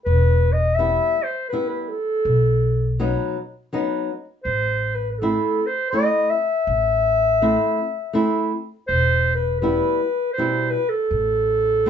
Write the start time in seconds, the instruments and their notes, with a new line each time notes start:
0.05 upright bass E1, clarinet B4
0.52 clarinet D#5
0.75 nylon-string guitar G3 B3, clarinet E5
0.80 nylon-string guitar E4
1.23 clarinet C5
1.49 nylon-string guitar B3, clarinet B4
1.53 nylon-string guitar G3 E4
1.69 clarinet B4
1.82 clarinet B4
1.88 clarinet A4
2.25 upright bass B1
3.00 nylon-string guitar F#3 B3 D#4
3.73 nylon-string guitar F#3 B3 D#4
4.44 upright bass A1, clarinet C5
4.95 clarinet B4
5.12 clarinet B4
5.19 nylon-string guitar A3 C4, clarinet A4
5.23 nylon-string guitar E4
5.67 clarinet C5
5.90 nylon-string guitar A3 C4 E4, clarinet D#5
6.30 clarinet E5
6.67 upright bass A1
7.42 nylon-string guitar A3 C4 E4
8.13 nylon-string guitar A3 C4 E4
8.88 upright bass E1, clarinet C5
9.35 clarinet B4
9.60 nylon-string guitar G3 B3 E4, clarinet B4
10.33 clarinet C5
10.38 nylon-string guitar B2 G3 E4
10.70 clarinet B4
10.89 clarinet A4
11.11 upright bass A1
11.86 nylon-string guitar A3 C4